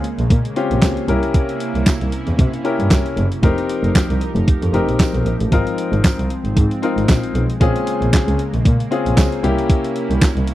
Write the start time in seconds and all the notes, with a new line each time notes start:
Already playing: C#3 G#3 A#3
0.04 closed hi-hat
0.19 A#1, closed hi-hat
0.30 A#2, kick, closed hi-hat
0.45 closed hi-hat
0.56 C4 C#4 F4 G4, closed hi-hat
0.71 A#1, closed hi-hat
0.82 C#2, kick, snare, clap, closed hi-hat, tambourine
0.97 closed hi-hat
1.08 C2 C3 C#4 E4 G4 A#4, closed hi-hat
1.23 closed hi-hat
1.34 kick, closed hi-hat
1.49 closed hi-hat
1.60 closed hi-hat
1.75 C2, closed hi-hat
1.86 kick, snare, clap, closed hi-hat, tambourine
2.01 C2, closed hi-hat
2.12 closed hi-hat
2.27 E2, closed hi-hat
2.39 C3, kick, closed hi-hat
2.54 closed hi-hat
2.64 C#4 E4 G4 A#4, closed hi-hat
2.79 G2, closed hi-hat
2.91 C2, kick, snare, clap, closed hi-hat, tambourine
3.06 closed hi-hat
3.17 F#1, closed hi-hat
3.32 closed hi-hat
3.43 F1 F3 C4 D#4 G4 A#4, kick, closed hi-hat
3.58 closed hi-hat
3.69 closed hi-hat
3.84 F1, closed hi-hat
3.95 kick, snare, clap, closed hi-hat, tambourine
4.10 C2, closed hi-hat
4.21 closed hi-hat
4.36 F1, closed hi-hat
4.48 kick, closed hi-hat
4.62 F2, closed hi-hat
4.73 F1 C4 D#4 G4 A#4, closed hi-hat
4.88 A#1, closed hi-hat
4.99 kick, snare, clap, closed hi-hat, tambourine
5.14 B1, closed hi-hat
5.26 A#1, closed hi-hat
5.40 A1, closed hi-hat
5.52 G#1 G#3 C4 D#4 F4 A#4, kick, closed hi-hat
5.67 closed hi-hat
5.78 closed hi-hat
5.93 G#1, closed hi-hat
6.04 kick, snare, clap, closed hi-hat, tambourine
6.19 C2, closed hi-hat
6.30 closed hi-hat
6.45 G#1, closed hi-hat
6.57 G#2, kick, closed hi-hat
6.71 closed hi-hat
6.82 C4 D#4 F4 A#4, closed hi-hat
6.97 G#1, closed hi-hat
7.08 A#1, kick, snare, clap, closed hi-hat, tambourine
7.23 closed hi-hat
7.35 B1, closed hi-hat
7.50 closed hi-hat
7.61 A#1 C#3 A#3 C4 C#4 F4 G#4, kick, closed hi-hat
7.76 closed hi-hat
7.87 closed hi-hat
8.02 A#1, closed hi-hat
8.13 kick, snare, clap, closed hi-hat, tambourine
8.28 C#2, closed hi-hat
8.39 closed hi-hat
8.54 A#1, closed hi-hat
8.65 A#2, kick, closed hi-hat
8.80 closed hi-hat
8.91 C4 C#4 F4 G#4, closed hi-hat
9.06 A#1, closed hi-hat
9.17 C#2, kick, snare, clap, closed hi-hat, tambourine
9.32 closed hi-hat
9.43 C2 C3 A#3 C#4 E4 G4, closed hi-hat
9.58 closed hi-hat
9.69 kick, closed hi-hat
9.84 closed hi-hat
9.96 closed hi-hat
10.10 C2, closed hi-hat
10.22 kick, snare, clap, closed hi-hat, tambourine
10.36 C2, closed hi-hat
10.47 closed hi-hat